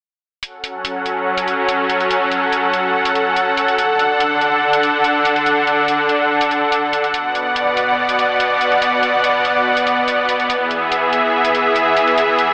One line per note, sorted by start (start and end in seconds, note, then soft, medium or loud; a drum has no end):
0.43 3.75 F#3 medium
0.43 3.75 C#4 medium
0.43 7.10 A4 medium
0.43 7.10 F#5 medium
0.43 closed hi-hat medium
0.64 closed hi-hat medium
0.85 closed hi-hat medium
1.06 closed hi-hat soft
1.38 closed hi-hat medium
1.48 closed hi-hat soft
1.69 closed hi-hat medium
1.90 closed hi-hat medium
2.01 closed hi-hat soft
2.11 closed hi-hat medium
2.32 closed hi-hat soft
2.53 closed hi-hat medium
2.74 closed hi-hat soft
3.05 closed hi-hat medium
3.15 closed hi-hat soft
3.36 closed hi-hat medium
3.57 closed hi-hat medium
3.68 closed hi-hat soft
3.78 7.11 D3 medium
3.78 7.11 D4 medium
3.78 closed hi-hat medium
3.99 closed hi-hat soft
4.20 closed hi-hat medium
4.41 closed hi-hat soft
4.73 closed hi-hat medium
4.83 closed hi-hat soft
5.04 closed hi-hat medium
5.25 closed hi-hat medium
5.36 closed hi-hat soft
5.46 closed hi-hat medium
5.67 closed hi-hat soft
5.88 closed hi-hat medium
6.09 closed hi-hat soft
6.41 closed hi-hat medium
6.51 closed hi-hat soft
6.72 closed hi-hat medium
6.93 closed hi-hat medium
7.04 closed hi-hat soft
7.14 10.46 B2 medium
7.14 12.54 B3 medium
7.14 10.46 D5 medium
7.14 10.46 F#5 medium
7.14 closed hi-hat medium
7.35 closed hi-hat soft
7.56 closed hi-hat medium
7.77 closed hi-hat soft
8.09 closed hi-hat medium
8.19 closed hi-hat soft
8.40 closed hi-hat medium
8.61 closed hi-hat medium
8.72 closed hi-hat soft
8.82 closed hi-hat medium
9.03 closed hi-hat soft
9.24 closed hi-hat medium
9.45 closed hi-hat soft
9.77 closed hi-hat medium
9.87 closed hi-hat soft
10.08 closed hi-hat medium
10.29 closed hi-hat medium
10.40 closed hi-hat soft
10.50 12.54 E3 medium
10.50 12.54 G#4 medium
10.50 12.54 E5 medium
10.50 closed hi-hat medium
10.71 closed hi-hat soft
10.92 closed hi-hat medium
11.13 closed hi-hat medium
11.45 closed hi-hat medium
11.55 closed hi-hat medium
11.76 closed hi-hat medium
11.97 closed hi-hat medium
12.08 closed hi-hat soft
12.18 closed hi-hat medium
12.39 closed hi-hat medium